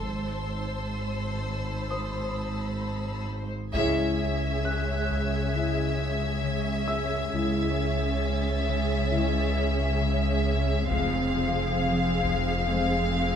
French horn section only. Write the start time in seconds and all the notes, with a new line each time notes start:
3.75 G#3 E4
5.55 G#3 E4
7.34 G#3 E4
9.12 G#3 E4
10.90 G#3 C4
12.68 G#3 C4